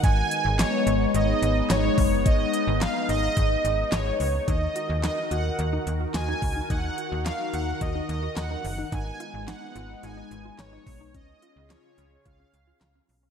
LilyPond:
<<
  \new Staff \with { instrumentName = "Analog polysynth" } { \time 4/4 \key aes \dorian \tempo 4 = 108 aes''4 des''4 ees''4 des''4 | ees''4 f''8 ees''4. des''4 | ees''4 ees''8 ges''4 r8 aes''4 | ges''4 f''8 ges''8 ees''8 ees''8 ges''4 |
aes''4 ges''4 aes''4 des''4 | ees''4 des''4 f''4. r8 | }
  \new Staff \with { instrumentName = "Synth arpeggio sound" } { \time 4/4 \key aes \dorian r1 | r1 | ees'8 ges'8 ees'8 ges'8 ges'16 ees'8 ges'8 ees'8 ees'16 | ees'8 ges'8 ees'8 ges'8 ges'16 ees'8 ges'8 ees'8 ees'16 |
ees'8 f'8 ees'8 f'8 f'16 ees'8 f'8 ees'8 ees'16 | des'8 f'8 des'8 f'8 f'16 des'8 f'8 des'8 des'16 | }
  \new Staff \with { instrumentName = "Analog synth pad" } { \time 4/4 \key aes \dorian << { ces'1~ | ces'1 | <ees ges' bes'>1~ | <ees ges' bes'>1 |
<ces' ees'>1 | <des f' aes'>1 | } \\ { <aes ees'>1~ | <aes ees'>1~ | <aes ees'>1~ | <aes ees'>1 |
aes1 | des'1 | } >> }
  \new Staff \with { instrumentName = "FM bass" } { \clef bass \time 4/4 \key aes \dorian aes,,8 r16 aes,,8 r16 aes,,8 aes,,8 aes,,8 aes,,8 ges,,8 | aes,,8 r16 aes,,8 r16 aes,,8 aes,,8 aes,,8 aes,,8 des,8 | ees,8 r16 ees,8 r16 ees,8 ees,8 ees,8 ees,8 des,8 | ees,8 r16 ees,8 r16 ees,8 ees,8 ees,8 ees,8 ges,,8 |
aes,,8 r16 aes,,8 r16 aes,,8 aes,,8 aes,,8 aes,,8 ces,8 | des,8 r16 des,8 r16 des,8 des,8 des,8 des,8 ces,8 | }
  \new DrumStaff \with { instrumentName = "Drums" } \drummode { \time 4/4 <hh bd>8 hh8 <hc hh sn>8 hh8 hh8 hh8 <hc hh sn>8 <hho bd>8 | <hh bd>8 hh8 <hc hh sn>8 hh8 <hh bd>8 hh8 <hc hh sn>8 hho8 | <hh bd>8 hh8 <hc hh sn>8 hh8 hh8 hh8 <hc hh sn>8 <hho bd>8 | <hh bd>8 hh8 <hc hh sn>8 hh8 <hh bd>8 hh8 <hc hh sn>8 hho8 |
<hh bd>8 hh8 <hc hh sn>8 hh8 hh8 hh8 <hc hh sn>8 <hho bd>8 | <hh bd>8 hh8 <hc hh sn>8 hh8 <hh bd>8 hh8 <hc hh sn>8 hho8 | }
>>